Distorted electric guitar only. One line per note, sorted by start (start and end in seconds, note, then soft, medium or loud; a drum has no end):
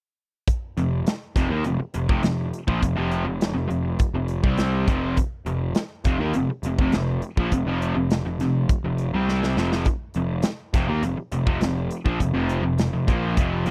0.78 1.00 F2 medium
0.78 1.01 C3 medium
1.36 1.49 F2 medium
1.36 1.50 C3 medium
1.51 1.64 D#3 medium
1.51 1.64 A#3 medium
1.66 1.79 F2 medium
1.66 1.80 C3 medium
1.80 muted distorted electric guitar stroke soft
1.94 2.07 F2 medium
1.94 2.08 C3 medium
2.09 2.22 F2 medium
2.09 2.23 C3 medium
2.24 2.47 F2 medium
2.24 2.47 C3 medium
2.67 2.81 A#2 medium
2.67 2.82 F3 medium
2.81 2.95 F2 medium
2.81 2.96 C3 medium
2.96 3.24 F2 medium
2.96 3.25 C3 medium
2.96 3.26 F3 medium
3.25 3.49 F2 medium
3.25 3.50 C3 medium
3.55 3.67 F2 medium
3.55 3.68 C3 medium
3.69 3.93 F2 medium
3.69 3.93 C3 medium
4.14 4.38 F2 medium
4.14 4.38 C3 medium
4.44 4.87 C3 medium
4.44 4.87 G3 medium
4.44 4.88 C4 loud
4.88 5.16 F2 medium
4.88 5.16 C3 medium
4.88 5.17 F3 medium
5.46 5.70 F2 medium
5.46 5.70 C3 medium
6.06 6.19 F2 medium
6.06 6.20 C3 medium
6.20 6.34 D#3 medium
6.20 6.34 A#3 medium
6.35 6.49 F2 medium
6.35 6.49 C3 medium
6.50 muted distorted electric guitar stroke medium
6.65 6.79 F2 medium
6.65 6.79 C3 medium
6.80 6.93 F2 medium
6.80 6.93 C3 loud
6.95 7.18 F2 medium
6.95 7.18 C3 medium
7.39 7.52 A#2 medium
7.39 7.52 F3 medium
7.54 7.66 F2 medium
7.54 7.67 C3 medium
7.67 7.95 F2 medium
7.67 7.95 C3 medium
7.67 7.96 F3 medium
7.96 8.19 F2 medium
7.96 8.20 C3 medium
8.26 8.40 F2 medium
8.26 8.40 C3 medium
8.41 8.64 F2 medium
8.41 8.64 C3 medium
8.84 9.07 F2 medium
8.84 9.08 C3 medium
9.14 9.56 C3 medium
9.14 9.57 G3 medium
9.14 9.57 C4 medium
9.57 9.86 F2 medium
9.57 9.86 C3 medium
9.57 9.86 F3 medium
10.16 10.39 F2 medium
10.16 10.39 C3 medium
10.74 10.88 F2 medium
10.74 10.87 C3 medium
10.88 11.02 D#3 medium
10.88 11.02 A#3 medium
11.02 11.16 F2 medium
11.02 11.18 C3 medium
11.17 muted distorted electric guitar stroke soft
11.32 11.45 F2 medium
11.32 11.47 C3 medium
11.47 11.61 F2 medium
11.47 11.61 C3 medium
11.62 11.85 F2 medium
11.62 11.86 C3 medium
12.05 12.19 A#2 medium
12.05 12.20 F3 medium
12.20 12.33 F2 medium
12.20 12.33 C3 medium
12.34 12.62 F2 medium
12.34 12.63 C3 medium
12.34 12.63 F3 medium
12.64 12.87 F2 medium
12.64 12.87 C3 medium
12.93 13.08 F2 medium
12.93 13.07 C3 medium
13.07 13.36 A#2 medium
13.07 13.36 F3 medium
13.07 13.37 A#3 medium
13.38 13.66 F2 medium
13.38 13.66 C3 medium
13.38 13.66 F3 medium
13.67 13.71 A#2 medium
13.67 13.71 F3 medium